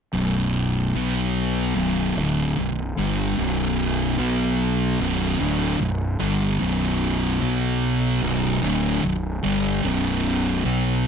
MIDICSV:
0, 0, Header, 1, 3, 480
1, 0, Start_track
1, 0, Key_signature, 2, "minor"
1, 0, Tempo, 809717
1, 79, Time_signature, 4, 2, 24, 8
1, 6565, End_track
2, 0, Start_track
2, 0, Title_t, "Distorted electric guitar"
2, 0, Program_c, 0, 30
2, 79, Note_on_c, 0, 35, 84
2, 82, Note_on_c, 0, 42, 90
2, 82, Note_on_c, 0, 47, 91
2, 553, Note_off_c, 0, 35, 0
2, 554, Note_off_c, 0, 42, 0
2, 554, Note_off_c, 0, 47, 0
2, 562, Note_on_c, 0, 47, 88
2, 565, Note_on_c, 0, 54, 90
2, 569, Note_on_c, 0, 59, 92
2, 1035, Note_off_c, 0, 47, 0
2, 1036, Note_off_c, 0, 54, 0
2, 1037, Note_on_c, 0, 35, 89
2, 1038, Note_off_c, 0, 59, 0
2, 1040, Note_on_c, 0, 42, 97
2, 1043, Note_on_c, 0, 47, 105
2, 1272, Note_off_c, 0, 35, 0
2, 1273, Note_off_c, 0, 42, 0
2, 1275, Note_off_c, 0, 47, 0
2, 1286, Note_on_c, 0, 38, 80
2, 1290, Note_on_c, 0, 45, 95
2, 1290, Note_on_c, 0, 50, 88
2, 1517, Note_off_c, 0, 38, 0
2, 1519, Note_off_c, 0, 45, 0
2, 1519, Note_off_c, 0, 50, 0
2, 1528, Note_on_c, 0, 42, 62
2, 1529, Note_on_c, 0, 35, 57
2, 1717, Note_off_c, 0, 35, 0
2, 1717, Note_off_c, 0, 42, 0
2, 1761, Note_on_c, 0, 43, 96
2, 1765, Note_on_c, 0, 50, 100
2, 1766, Note_on_c, 0, 55, 94
2, 1994, Note_off_c, 0, 43, 0
2, 1996, Note_off_c, 0, 50, 0
2, 1997, Note_off_c, 0, 55, 0
2, 2003, Note_on_c, 0, 35, 81
2, 2006, Note_on_c, 0, 42, 91
2, 2007, Note_on_c, 0, 47, 95
2, 2473, Note_off_c, 0, 47, 0
2, 2476, Note_off_c, 0, 35, 0
2, 2477, Note_off_c, 0, 42, 0
2, 2480, Note_on_c, 0, 47, 75
2, 2483, Note_on_c, 0, 54, 90
2, 2485, Note_on_c, 0, 59, 99
2, 2954, Note_off_c, 0, 47, 0
2, 2955, Note_off_c, 0, 54, 0
2, 2956, Note_off_c, 0, 59, 0
2, 2959, Note_on_c, 0, 35, 84
2, 2963, Note_on_c, 0, 42, 94
2, 2964, Note_on_c, 0, 47, 110
2, 3191, Note_off_c, 0, 35, 0
2, 3193, Note_on_c, 0, 38, 89
2, 3195, Note_off_c, 0, 42, 0
2, 3196, Note_off_c, 0, 47, 0
2, 3199, Note_on_c, 0, 45, 90
2, 3199, Note_on_c, 0, 50, 90
2, 3430, Note_off_c, 0, 38, 0
2, 3433, Note_off_c, 0, 45, 0
2, 3433, Note_off_c, 0, 50, 0
2, 3435, Note_on_c, 0, 35, 60
2, 3438, Note_on_c, 0, 42, 64
2, 3630, Note_off_c, 0, 35, 0
2, 3631, Note_off_c, 0, 42, 0
2, 3672, Note_on_c, 0, 43, 85
2, 3676, Note_on_c, 0, 50, 101
2, 3679, Note_on_c, 0, 55, 98
2, 3909, Note_off_c, 0, 43, 0
2, 3911, Note_off_c, 0, 50, 0
2, 3912, Note_on_c, 0, 35, 80
2, 3913, Note_off_c, 0, 55, 0
2, 3916, Note_on_c, 0, 42, 96
2, 3918, Note_on_c, 0, 47, 96
2, 4385, Note_off_c, 0, 47, 0
2, 4389, Note_off_c, 0, 35, 0
2, 4389, Note_off_c, 0, 42, 0
2, 4392, Note_on_c, 0, 47, 83
2, 4395, Note_on_c, 0, 54, 90
2, 4399, Note_on_c, 0, 59, 89
2, 4868, Note_off_c, 0, 47, 0
2, 4870, Note_off_c, 0, 54, 0
2, 4872, Note_off_c, 0, 59, 0
2, 4873, Note_on_c, 0, 35, 97
2, 4876, Note_on_c, 0, 42, 99
2, 4877, Note_on_c, 0, 47, 104
2, 5109, Note_off_c, 0, 35, 0
2, 5110, Note_off_c, 0, 42, 0
2, 5111, Note_off_c, 0, 47, 0
2, 5114, Note_on_c, 0, 38, 85
2, 5118, Note_on_c, 0, 45, 96
2, 5120, Note_on_c, 0, 50, 98
2, 5349, Note_off_c, 0, 38, 0
2, 5351, Note_off_c, 0, 45, 0
2, 5352, Note_off_c, 0, 50, 0
2, 5352, Note_on_c, 0, 35, 56
2, 5355, Note_on_c, 0, 42, 72
2, 5547, Note_off_c, 0, 35, 0
2, 5548, Note_off_c, 0, 42, 0
2, 5591, Note_on_c, 0, 43, 87
2, 5595, Note_on_c, 0, 50, 92
2, 5597, Note_on_c, 0, 55, 100
2, 5827, Note_off_c, 0, 43, 0
2, 5829, Note_off_c, 0, 50, 0
2, 5830, Note_off_c, 0, 55, 0
2, 5832, Note_on_c, 0, 35, 84
2, 5833, Note_on_c, 0, 42, 85
2, 5838, Note_on_c, 0, 47, 95
2, 6303, Note_off_c, 0, 47, 0
2, 6306, Note_off_c, 0, 35, 0
2, 6307, Note_off_c, 0, 42, 0
2, 6310, Note_on_c, 0, 47, 89
2, 6314, Note_on_c, 0, 54, 101
2, 6316, Note_on_c, 0, 59, 92
2, 6565, Note_off_c, 0, 47, 0
2, 6565, Note_off_c, 0, 54, 0
2, 6565, Note_off_c, 0, 59, 0
2, 6565, End_track
3, 0, Start_track
3, 0, Title_t, "Fingered electric bass"
3, 0, Program_c, 1, 33
3, 82, Note_on_c, 1, 23, 93
3, 538, Note_off_c, 1, 23, 0
3, 564, Note_on_c, 1, 35, 97
3, 1019, Note_off_c, 1, 35, 0
3, 1044, Note_on_c, 1, 23, 79
3, 1266, Note_off_c, 1, 23, 0
3, 1285, Note_on_c, 1, 26, 84
3, 1507, Note_off_c, 1, 26, 0
3, 1529, Note_on_c, 1, 23, 73
3, 1749, Note_off_c, 1, 23, 0
3, 1766, Note_on_c, 1, 31, 87
3, 1987, Note_off_c, 1, 31, 0
3, 2008, Note_on_c, 1, 23, 89
3, 2461, Note_off_c, 1, 23, 0
3, 2484, Note_on_c, 1, 35, 102
3, 2939, Note_off_c, 1, 35, 0
3, 2961, Note_on_c, 1, 23, 92
3, 3185, Note_off_c, 1, 23, 0
3, 3201, Note_on_c, 1, 26, 90
3, 3425, Note_off_c, 1, 26, 0
3, 3440, Note_on_c, 1, 23, 78
3, 3664, Note_off_c, 1, 23, 0
3, 3682, Note_on_c, 1, 31, 88
3, 3905, Note_off_c, 1, 31, 0
3, 3922, Note_on_c, 1, 23, 88
3, 4378, Note_off_c, 1, 23, 0
3, 4400, Note_on_c, 1, 35, 97
3, 4856, Note_off_c, 1, 35, 0
3, 4878, Note_on_c, 1, 23, 91
3, 5101, Note_off_c, 1, 23, 0
3, 5117, Note_on_c, 1, 26, 88
3, 5341, Note_off_c, 1, 26, 0
3, 5359, Note_on_c, 1, 23, 73
3, 5582, Note_off_c, 1, 23, 0
3, 5598, Note_on_c, 1, 31, 92
3, 5820, Note_off_c, 1, 31, 0
3, 5838, Note_on_c, 1, 23, 94
3, 6293, Note_off_c, 1, 23, 0
3, 6318, Note_on_c, 1, 35, 93
3, 6565, Note_off_c, 1, 35, 0
3, 6565, End_track
0, 0, End_of_file